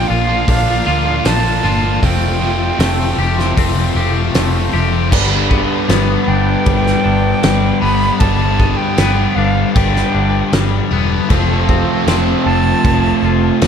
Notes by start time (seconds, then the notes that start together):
Already playing: A#2 F3
0.07 A#1 A#2 F3 A#3 D4 F4 F5, muted overdriven electric guitar stroke
0.27 F3 A#3 D4 F4
0.47 A#1 A#2 F3 A#3 D4, kick, open hi-hat
0.67 F3 A#3
0.85 D2 A#2 D3 F3 A#3 D4 F4
1.05 F3 A#3 D4 F4
1.24 A#1 A#2 D3 F3 A#3 D4 F4 A5, snare, open hi-hat
1.44 A#3 D4 F4
1.62 G1 A#2 D3 F3 A#3 D4 F4
1.82 F3 A#3 D4 F4
2.02 F1 F2 C3 F3 A3 C4 F4 G5, kick, open hi-hat
2.40 F2 C3 F3 A3 C4 F4
2.44 F3
2.61 C3 F3
2.78 F1 F2 C3 F3 A3 C4 F4, snare, open hi-hat
2.83 F3
2.99 F3 A3 C4 F4
3.17 F1 F2 C3 F3 A3 C4 G4, muted overdriven electric guitar stroke
3.37 C3 F3 A3 C4 F4, snare
3.57 F1 F2 C3 F3 A3 C4, kick, open hi-hat
3.76 C3 F3
3.95 F1 F2 C3 F3 A3 C4 F4 G4
4.14 C3 F3 A3 C4 F4
4.33 F1 F2 C3 F3 A3 C4 F4, snare, open hi-hat
4.54 F3 A3 C4 F4
4.73 F1 F2 C3 F3 A3 C4 F4 G4
4.92 C3 F3 A3 C4 F4
5.11 G1 G2 D3 G3 B3 D4 G4 B4, kick, crash
5.50 B3, kick
5.89 G1 G2 D3 G3 B3, snare, crash
6.26 G1 D3 G3 D4 G5
6.65 G1 G2 D3 G3, kick, crash
6.87 snare
7.04 G1 D4
7.42 G1 G2 D3 G3, snare, crash
7.81 G1 G3 B3 D4 G4 B5
7.85 G2 D3
8.20 G1 G2 D3 G3 B3 D4 G4 A5, kick, crash
8.60 B3, kick
8.77 G5
8.97 G1 G2 D3 G3 B3, snare, crash
9.35 G1 D3 G3 D4 F5
9.74 G1 G2 D3 G3 G5, kick, crash
9.96 snare
10.14 G1 D4
10.52 G1 G2 D3 G3, snare, crash
10.91 E1 G2 D3 G3 B3 D4 G4
11.29 F1 F2 C3 F3 A3 C4 F4 A4, kick, crash
11.69 C4, kick
12.06 F1 F2 C3 F3 C4, snare, crash
12.45 F1 C3 F3 F4 A5
12.83 F1 F2 C3 F3, kick, crash
13.22 F1 F4
13.61 F1 F2 C3 F3, snare, crash